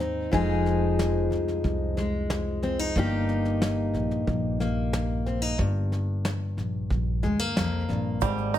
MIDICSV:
0, 0, Header, 1, 5, 480
1, 0, Start_track
1, 0, Key_signature, -3, "major"
1, 0, Tempo, 658617
1, 230, Time_signature, 4, 2, 24, 8
1, 6257, End_track
2, 0, Start_track
2, 0, Title_t, "Five-string banjo"
2, 0, Program_c, 0, 105
2, 5989, Note_on_c, 0, 55, 68
2, 6225, Note_on_c, 0, 63, 55
2, 6257, Note_off_c, 0, 55, 0
2, 6257, Note_off_c, 0, 63, 0
2, 6257, End_track
3, 0, Start_track
3, 0, Title_t, "Steel-string acoustic guitar"
3, 0, Program_c, 1, 25
3, 0, Note_on_c, 1, 44, 68
3, 0, Note_on_c, 1, 60, 50
3, 1, Note_on_c, 1, 63, 49
3, 204, Note_off_c, 1, 44, 0
3, 208, Note_off_c, 1, 60, 0
3, 229, Note_on_c, 1, 41, 68
3, 237, Note_on_c, 1, 53, 57
3, 240, Note_on_c, 1, 56, 57
3, 241, Note_off_c, 1, 63, 0
3, 244, Note_on_c, 1, 63, 59
3, 249, Note_on_c, 1, 68, 62
3, 1427, Note_off_c, 1, 56, 0
3, 1436, Note_on_c, 1, 56, 53
3, 1915, Note_off_c, 1, 63, 0
3, 1918, Note_on_c, 1, 60, 51
3, 2036, Note_off_c, 1, 60, 0
3, 2036, Note_on_c, 1, 63, 47
3, 2120, Note_off_c, 1, 41, 0
3, 2124, Note_off_c, 1, 53, 0
3, 2130, Note_off_c, 1, 68, 0
3, 2153, Note_off_c, 1, 56, 0
3, 2153, Note_off_c, 1, 63, 0
3, 2159, Note_on_c, 1, 43, 73
3, 2167, Note_on_c, 1, 58, 61
3, 2175, Note_on_c, 1, 63, 63
3, 2181, Note_on_c, 1, 67, 70
3, 3345, Note_off_c, 1, 58, 0
3, 3354, Note_on_c, 1, 58, 50
3, 3833, Note_off_c, 1, 63, 0
3, 3836, Note_on_c, 1, 60, 45
3, 3949, Note_off_c, 1, 60, 0
3, 3949, Note_on_c, 1, 63, 44
3, 4043, Note_off_c, 1, 58, 0
3, 4045, Note_off_c, 1, 43, 0
3, 4069, Note_off_c, 1, 63, 0
3, 4069, Note_on_c, 1, 43, 66
3, 4731, Note_off_c, 1, 67, 0
3, 5269, Note_on_c, 1, 56, 53
3, 5389, Note_off_c, 1, 56, 0
3, 5389, Note_on_c, 1, 58, 49
3, 5509, Note_off_c, 1, 43, 0
3, 5512, Note_on_c, 1, 41, 51
3, 5744, Note_off_c, 1, 41, 0
3, 5747, Note_on_c, 1, 43, 52
3, 5988, Note_off_c, 1, 43, 0
3, 5990, Note_off_c, 1, 58, 0
3, 5991, Note_on_c, 1, 44, 71
3, 6257, Note_off_c, 1, 44, 0
3, 6257, End_track
4, 0, Start_track
4, 0, Title_t, "Upright bass"
4, 0, Program_c, 2, 32
4, 0, Note_on_c, 2, 39, 84
4, 205, Note_off_c, 2, 39, 0
4, 238, Note_on_c, 2, 29, 83
4, 925, Note_off_c, 2, 29, 0
4, 952, Note_on_c, 2, 36, 75
4, 1179, Note_off_c, 2, 36, 0
4, 1197, Note_on_c, 2, 36, 86
4, 2124, Note_off_c, 2, 36, 0
4, 2155, Note_on_c, 2, 31, 76
4, 2843, Note_off_c, 2, 31, 0
4, 2868, Note_on_c, 2, 34, 75
4, 3097, Note_off_c, 2, 34, 0
4, 3115, Note_on_c, 2, 34, 81
4, 4043, Note_off_c, 2, 34, 0
4, 4073, Note_on_c, 2, 31, 75
4, 4763, Note_off_c, 2, 31, 0
4, 4790, Note_on_c, 2, 34, 65
4, 5018, Note_off_c, 2, 34, 0
4, 5034, Note_on_c, 2, 34, 83
4, 5260, Note_off_c, 2, 34, 0
4, 5272, Note_on_c, 2, 38, 77
4, 5487, Note_off_c, 2, 38, 0
4, 5513, Note_on_c, 2, 36, 68
4, 5728, Note_off_c, 2, 36, 0
4, 5753, Note_on_c, 2, 34, 70
4, 5968, Note_off_c, 2, 34, 0
4, 5993, Note_on_c, 2, 32, 73
4, 6257, Note_off_c, 2, 32, 0
4, 6257, End_track
5, 0, Start_track
5, 0, Title_t, "Drums"
5, 0, Note_on_c, 9, 38, 25
5, 73, Note_off_c, 9, 38, 0
5, 238, Note_on_c, 9, 36, 78
5, 241, Note_on_c, 9, 38, 27
5, 311, Note_off_c, 9, 36, 0
5, 314, Note_off_c, 9, 38, 0
5, 481, Note_on_c, 9, 38, 26
5, 554, Note_off_c, 9, 38, 0
5, 722, Note_on_c, 9, 38, 75
5, 795, Note_off_c, 9, 38, 0
5, 961, Note_on_c, 9, 38, 25
5, 1033, Note_off_c, 9, 38, 0
5, 1079, Note_on_c, 9, 38, 24
5, 1152, Note_off_c, 9, 38, 0
5, 1195, Note_on_c, 9, 38, 23
5, 1197, Note_on_c, 9, 36, 54
5, 1268, Note_off_c, 9, 38, 0
5, 1270, Note_off_c, 9, 36, 0
5, 1437, Note_on_c, 9, 38, 26
5, 1510, Note_off_c, 9, 38, 0
5, 1676, Note_on_c, 9, 38, 84
5, 1749, Note_off_c, 9, 38, 0
5, 1913, Note_on_c, 9, 38, 24
5, 1986, Note_off_c, 9, 38, 0
5, 2154, Note_on_c, 9, 38, 24
5, 2156, Note_on_c, 9, 36, 72
5, 2227, Note_off_c, 9, 38, 0
5, 2228, Note_off_c, 9, 36, 0
5, 2396, Note_on_c, 9, 38, 25
5, 2469, Note_off_c, 9, 38, 0
5, 2516, Note_on_c, 9, 38, 24
5, 2589, Note_off_c, 9, 38, 0
5, 2635, Note_on_c, 9, 38, 78
5, 2708, Note_off_c, 9, 38, 0
5, 2874, Note_on_c, 9, 38, 25
5, 2947, Note_off_c, 9, 38, 0
5, 2996, Note_on_c, 9, 38, 22
5, 3069, Note_off_c, 9, 38, 0
5, 3115, Note_on_c, 9, 36, 58
5, 3115, Note_on_c, 9, 38, 25
5, 3187, Note_off_c, 9, 36, 0
5, 3188, Note_off_c, 9, 38, 0
5, 3354, Note_on_c, 9, 38, 26
5, 3427, Note_off_c, 9, 38, 0
5, 3595, Note_on_c, 9, 38, 90
5, 3668, Note_off_c, 9, 38, 0
5, 3836, Note_on_c, 9, 38, 22
5, 3909, Note_off_c, 9, 38, 0
5, 4074, Note_on_c, 9, 36, 78
5, 4075, Note_on_c, 9, 38, 26
5, 4147, Note_off_c, 9, 36, 0
5, 4148, Note_off_c, 9, 38, 0
5, 4315, Note_on_c, 9, 38, 25
5, 4388, Note_off_c, 9, 38, 0
5, 4554, Note_on_c, 9, 38, 85
5, 4626, Note_off_c, 9, 38, 0
5, 4794, Note_on_c, 9, 38, 27
5, 4867, Note_off_c, 9, 38, 0
5, 5031, Note_on_c, 9, 38, 23
5, 5032, Note_on_c, 9, 36, 62
5, 5104, Note_off_c, 9, 38, 0
5, 5105, Note_off_c, 9, 36, 0
5, 5273, Note_on_c, 9, 38, 26
5, 5346, Note_off_c, 9, 38, 0
5, 5515, Note_on_c, 9, 38, 91
5, 5588, Note_off_c, 9, 38, 0
5, 5751, Note_on_c, 9, 38, 23
5, 5824, Note_off_c, 9, 38, 0
5, 5985, Note_on_c, 9, 82, 71
5, 5992, Note_on_c, 9, 36, 79
5, 5992, Note_on_c, 9, 38, 26
5, 6058, Note_off_c, 9, 82, 0
5, 6065, Note_off_c, 9, 36, 0
5, 6065, Note_off_c, 9, 38, 0
5, 6107, Note_on_c, 9, 82, 23
5, 6180, Note_off_c, 9, 82, 0
5, 6227, Note_on_c, 9, 82, 59
5, 6230, Note_on_c, 9, 38, 26
5, 6257, Note_off_c, 9, 38, 0
5, 6257, Note_off_c, 9, 82, 0
5, 6257, End_track
0, 0, End_of_file